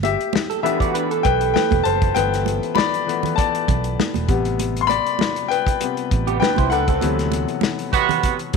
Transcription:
0.00 0.15 G1 loud
0.00 0.62 E5 medium
0.00 muted conga medium
0.05 0.61 G4 medium
0.05 closed hi-hat medium
0.20 closed hi-hat soft
0.33 snare loud
0.33 high conga medium
0.50 0.63 A4 medium
0.50 closed hi-hat medium
0.63 1.05 E3 medium
0.63 1.05 A3 soft
0.63 1.05 B3 medium
0.63 0.80 D4 medium
0.63 1.21 G4 medium
0.63 0.79 B4 medium
0.63 1.20 E5 medium
0.63 closed hi-hat medium
0.80 0.94 F#4 medium
0.80 0.94 D5 medium
0.80 kick medium
0.80 closed hi-hat medium
0.94 1.10 D4 medium
0.94 1.10 B4 medium
0.94 closed hi-hat medium
1.11 1.98 A4 medium
1.11 closed hi-hat soft
1.23 1.52 B1 medium
1.23 1.53 B4 medium
1.23 1.52 G5 loud
1.23 kick medium
1.23 closed hi-hat medium
1.41 closed hi-hat medium
1.54 1.83 B4 medium
1.54 1.86 G5 medium
1.54 snare loud
1.54 high conga medium
1.71 1.84 E1 medium
1.71 kick loud
1.71 closed hi-hat soft
1.71 high conga medium
1.84 2.13 F#1 medium
1.84 2.14 C5 medium
1.84 2.16 A5 medium
1.84 closed hi-hat medium
2.02 kick loud
2.02 closed hi-hat medium
2.15 2.58 G1 loud
2.15 2.43 E3 soft
2.15 2.43 A3 soft
2.15 2.43 B3 medium
2.15 2.73 B4 medium
2.15 2.78 G5 loud
2.15 closed hi-hat loud
2.15 muted conga soft
2.33 snare soft
2.33 closed hi-hat medium
2.46 closed hi-hat medium
2.46 muted conga medium
2.63 closed hi-hat soft
2.75 3.33 D5 medium
2.75 3.38 B5 loud
2.75 snare loud
2.75 high conga medium
2.94 closed hi-hat soft
3.06 4.24 E3 medium
3.06 4.25 A3 soft
3.06 4.25 B3 medium
3.06 closed hi-hat medium
3.23 closed hi-hat medium
3.23 low conga medium
3.36 4.25 D5 medium
3.36 4.24 A5 medium
3.36 kick medium
3.36 closed hi-hat loud
3.36 muted conga soft
3.55 closed hi-hat medium
3.68 3.96 B1 medium
3.68 kick medium
3.68 closed hi-hat medium
3.68 low conga medium
3.84 closed hi-hat medium
4.00 snare loud
4.00 high conga medium
4.14 4.28 E1 medium
4.14 closed hi-hat soft
4.14 high conga medium
4.28 4.98 A1 medium
4.28 4.70 C3 medium
4.28 4.70 G3 medium
4.28 4.70 B3 medium
4.28 kick loud
4.28 closed hi-hat medium
4.45 closed hi-hat medium
4.59 closed hi-hat loud
4.59 muted conga soft
4.76 closed hi-hat medium
4.81 4.88 C6 medium
4.87 5.46 D5 medium
4.87 5.51 B5 loud
4.87 closed hi-hat medium
4.87 muted conga medium
5.06 closed hi-hat soft
5.19 snare loud
5.19 high conga medium
5.36 closed hi-hat medium
5.48 6.37 B4 medium
5.48 6.38 G5 loud
5.48 closed hi-hat medium
5.67 kick loud
5.67 closed hi-hat medium
5.80 6.08 C3 soft
5.80 6.08 G3 soft
5.80 6.08 B3 medium
5.80 closed hi-hat loud
5.80 muted conga soft
5.97 closed hi-hat medium
6.11 6.39 A1 medium
6.11 kick medium
6.11 closed hi-hat medium
6.27 6.41 B3 medium
6.27 6.40 G4 medium
6.27 closed hi-hat soft
6.40 6.57 D4 medium
6.40 6.57 B4 medium
6.40 6.70 B4 medium
6.40 6.72 G5 medium
6.40 snare loud
6.40 high conga medium
6.56 6.72 C2 medium
6.56 6.71 E4 medium
6.56 6.71 C5 medium
6.56 kick loud
6.56 closed hi-hat soft
6.56 high conga medium
6.70 6.99 C#2 medium
6.70 6.88 D4 medium
6.70 7.89 A4 medium
6.70 6.87 B4 medium
6.70 7.88 F#5 loud
6.70 closed hi-hat medium
6.88 7.17 C4 medium
6.88 7.17 A4 medium
6.88 kick loud
6.88 closed hi-hat medium
7.01 7.44 D2 loud
7.01 7.43 C3 medium
7.01 7.43 E3 medium
7.01 7.44 F#3 soft
7.01 7.44 B3 medium
7.01 closed hi-hat medium
7.01 muted conga soft
7.19 snare soft
7.19 closed hi-hat medium
7.32 closed hi-hat medium
7.32 muted conga medium
7.48 closed hi-hat soft
7.61 snare loud
7.61 high conga medium
7.79 closed hi-hat medium
7.93 8.37 C3 medium
7.93 8.37 B3 medium
7.93 8.37 F#4 medium
7.93 kick medium
7.93 closed hi-hat medium
8.09 closed hi-hat medium
8.09 low conga medium
8.23 kick medium
8.23 closed hi-hat medium
8.23 muted conga soft
8.39 closed hi-hat soft
8.53 8.57 C3 medium
8.53 closed hi-hat medium

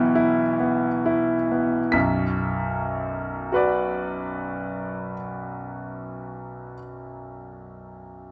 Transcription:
0.00 1.90 B1 medium
0.00 0.60 B3 medium
0.00 0.15 E4 medium
0.00 1.89 G5 medium
0.00 1.93 G6 loud
0.15 0.86 E4 medium
0.60 1.34 B3 medium
1.06 1.78 E4 medium
1.52 1.94 B3 medium
1.92 5.14 B1 medium
1.92 5.14 F#2 medium
1.92 5.13 B6 medium
3.52 6.73 F#4 medium
3.52 6.75 B4 medium
3.52 6.77 D5 medium

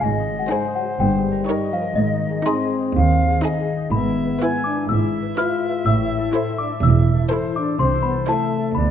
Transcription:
0.00 0.41 G#1 medium
0.00 0.41 G#2 medium
0.00 1.02 G#2 soft
0.00 1.02 G#3 soft
0.00 0.36 G#3 medium
0.00 0.35 G#4 soft
0.00 0.53 D#5 medium
0.00 0.36 G#5 medium
0.20 1.15 D#4 soft
0.36 0.82 G#4 soft
0.36 0.51 F#5 medium
0.40 0.52 F#3 medium
0.50 0.62 G#3 medium
0.50 0.88 D#4 medium
0.50 0.88 G#4 soft
0.50 0.87 C5 medium
0.50 1.48 C5 medium
0.50 1.02 C5 soft
0.50 0.74 G#5 medium
0.68 1.63 D#5 soft
0.75 0.87 F#3 medium
0.75 0.98 F#5 medium
0.84 1.02 G#4 soft
0.99 1.38 G1 medium
0.99 1.38 G2 medium
0.99 1.99 G2 medium
0.99 1.72 G3 medium
0.99 1.69 G5 medium
1.16 2.13 D#4 soft
1.32 1.80 A#4 soft
1.48 1.85 D#4 medium
1.48 1.84 A#4 medium
1.48 1.84 C#5 medium
1.48 1.99 C#5 soft
1.48 2.65 D#5 medium
1.65 2.46 D#5 soft
1.73 1.97 F3 medium
1.73 1.96 F5 medium
1.81 1.99 A#4 soft
1.96 2.36 G#1 medium
1.96 2.36 G#2 medium
1.96 3.92 G#2 medium
1.96 2.45 D#3 medium
1.96 2.42 D#5 medium
2.14 2.79 D#4 soft
2.30 2.63 G#4 soft
2.46 3.67 C4 medium
2.46 2.83 D#4 medium
2.46 2.83 G#4 soft
2.46 2.82 D#5 medium
2.46 3.43 D#5 soft
2.46 3.63 C6 medium
2.64 3.27 G#4 soft
2.80 3.11 D#4 soft
2.95 3.33 D#2 medium
2.95 3.94 D#3 soft
2.95 3.41 F5 medium
3.12 3.76 D#4 soft
3.28 3.59 G#4 soft
3.44 3.80 D#4 medium
3.44 3.80 G#4 medium
3.44 3.79 D#5 medium
3.44 3.94 D#5 medium
3.44 3.91 D#5 medium
3.60 5.87 G#4 soft
3.77 3.94 D#4 soft
3.92 4.30 G#1 medium
3.92 4.30 G#2 medium
3.92 4.88 G#2 medium
3.92 4.61 B3 medium
3.92 4.44 E5 medium
3.92 4.60 B5 medium
4.08 4.39 E4 soft
4.24 4.72 B4 soft
4.40 5.04 E4 soft
4.40 4.77 E4 medium
4.40 4.76 B4 medium
4.40 4.89 G#5 medium
4.57 5.52 E5 soft
4.64 4.89 D4 medium
4.64 4.87 D6 medium
4.73 5.20 B4 soft
4.89 5.27 G#1 medium
4.89 5.87 G#2 medium
4.89 5.27 G#2 medium
4.89 5.37 E4 medium
4.89 7.27 E5 medium
4.89 5.34 E6 medium
5.05 5.36 E4 soft
5.21 5.68 B4 soft
5.37 6.01 E4 soft
5.37 5.73 E4 medium
5.37 5.85 F4 medium
5.37 5.73 B4 medium
5.37 5.82 F6 medium
5.54 6.49 E5 soft
5.69 5.87 B4 soft
5.86 6.24 A1 medium
5.86 7.81 A2 medium
5.86 6.24 A2 medium
5.86 6.58 E4 medium
5.86 6.54 E6 medium
6.02 6.97 E4 soft
6.18 6.65 A4 soft
6.33 6.70 E4 medium
6.33 6.69 A4 medium
6.33 7.29 C5 medium
6.33 6.70 C5 medium
6.50 7.45 E5 soft
6.58 6.69 D4 medium
6.58 6.81 D6 medium
6.66 7.13 A4 soft
6.82 7.20 E1 medium
6.82 7.21 E2 medium
6.82 7.81 E3 soft
6.82 7.53 E4 medium
6.82 7.51 E6 medium
6.98 7.93 E4 soft
7.14 7.61 A4 soft
7.30 7.67 E4 medium
7.30 7.66 A4 medium
7.30 8.26 C5 soft
7.30 7.66 C5 medium
7.30 7.78 C5 medium
7.46 8.42 E5 soft
7.56 7.79 D4 medium
7.56 7.78 D6 medium
7.62 8.09 A4 soft
7.78 8.17 C2 medium
7.78 8.78 C3 medium
7.78 8.17 C3 medium
7.78 7.90 C4 medium
7.78 8.28 C5 medium
7.78 8.01 C6 medium
7.94 8.77 E4 soft
8.02 8.13 B3 medium
8.02 8.25 B5 medium
8.10 8.58 A4 soft
8.27 8.75 A3 medium
8.27 8.63 E4 medium
8.27 8.64 A4 soft
8.27 8.63 C5 medium
8.27 8.78 C5 soft
8.27 8.75 E5 medium
8.27 8.73 A5 medium
8.43 8.77 E5 soft
8.59 8.91 A4 soft
8.75 8.91 D2 medium
8.75 8.91 D3 soft
8.75 8.91 B3 medium
8.75 8.91 D5 medium
8.75 8.91 B5 medium

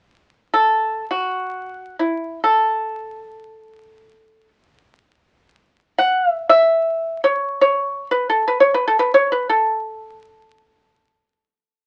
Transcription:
0.54 1.04 A4 medium
1.11 1.95 F#4 soft
1.99 2.39 E4 soft
2.44 4.48 A4 medium
5.98 6.30 F#5 medium
6.30 6.48 E5 medium
6.49 7.20 E5 medium
7.24 7.60 C#5 medium
7.61 8.08 C#5 medium
8.11 8.29 B4 medium
8.30 8.46 A4 soft
8.48 8.60 B4 medium
8.60 8.74 C#5 medium
8.74 8.87 B4 medium
8.88 8.99 A4 medium
8.99 9.14 B4 medium
9.14 9.30 C#5 medium
9.32 9.49 B4 medium
9.49 11.86 A4 medium

